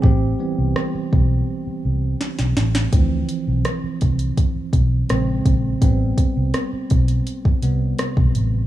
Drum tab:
HH |----------------|x-x-x-xxx-x-x-x-|x-x-x-xxx-x-x-x-|
SD |----r-------oooo|----r-------r---|----r-------r---|
BD |o-----o---------|o-----o-o-o---o-|o-o---o--o---o--|